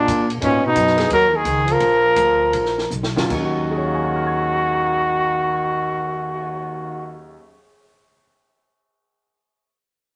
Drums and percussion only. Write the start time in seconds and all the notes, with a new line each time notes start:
0.08 kick, hi-hat pedal, ride
0.30 ride
0.42 kick, ride
0.76 kick, hi-hat pedal, ride
0.87 snare
0.98 snare, ride
1.10 kick, ride
1.45 kick, hi-hat pedal, ride
1.68 ride
1.80 kick, ride
2.16 kick, hi-hat pedal, ride
2.53 kick, ride
2.65 snare
2.78 snare
2.91 hi-hat pedal
3.03 snare
3.17 snare
3.30 kick, crash
3.56 cymbal swell